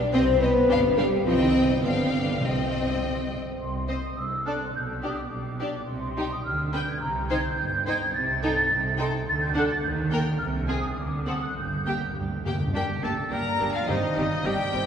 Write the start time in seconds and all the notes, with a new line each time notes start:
Already playing: D5
0.12 C2 C4 C5 D#5 G5
0.40 B3 C4 B4 D#5 G5
0.69 G1 D4 F5 G5
0.97 G3 D4 G4 F5 G5
1.25 C2 F3 C4 F4 D#5 G5
1.40 D#3 D#4
1.54 C3 C4
1.83 G1 D3 B3 D4 F5 G5
2.13 D3 D4
2.41 C2 C3 C4 D#5 G5
3.59 C2 C6
3.89 C4 C5 D#5
4.03 D#6
4.17 C2 E6
4.46 D4 A4 D5 F#6
4.74 B1 B2 G6
5.02 D4 G4 D5 D#6
5.17 D6
5.31 B1 B2
5.60 D4 G4 D5
5.86 C2 C3 C6
6.17 D#4 G4 G5
6.32 D#6
6.45 D2 D3 F6
6.73 D4 B4 G5 G6
6.89 G#6
7.01 C2 C3 A#5
7.29 D#4 C5 G5 G#6
7.43 G6
7.58 G1 G2
7.87 D#4 C5 G5 G#6
8.15 C2 C3 A6
8.43 D#4 A4 G5
8.71 C2 C3
8.98 D#4 A4 G5 C6
9.27 D2 D3 A6
9.41 G6
9.54 D4 A4 F#5 F#6
9.70 A6
9.83 D#2 D#3 G6
10.11 A#3 A#4 G5
10.39 C2 C3 F6
10.68 C4 G#4 G#5 D#6
10.97 D2 D3 D6
11.26 C4 A4 F#5 D#6
11.41 F#6
11.57 G1 G2 G6
11.73 G2
11.81 G2
11.86 G2 A#3 G4 G5
11.97 G2
12.05 G2
12.13 D2 G2
12.20 G2
12.29 G2
12.36 G2
12.45 G2 A2 A#3 G4 G5
12.52 G2
12.60 G2
12.68 G2
12.74 G1 G3 A#3 D4 G4 G5
13.02 G1 G3 A3 A#3 D4 G4 A4 A5
13.30 G1 G3 A#3 D4 G4 A#4 A#5
13.59 G1 G3 A#3 D4 G4
13.74 F3 F4 F5
13.87 G1 G2 D#3 G3 C4 D#4 G4 D#5
14.15 G1 G3 C4 D#4 G4
14.44 G1 G3 C4 D4 D#4 G4 G5
14.73 G1 G3 C4 D#4 G4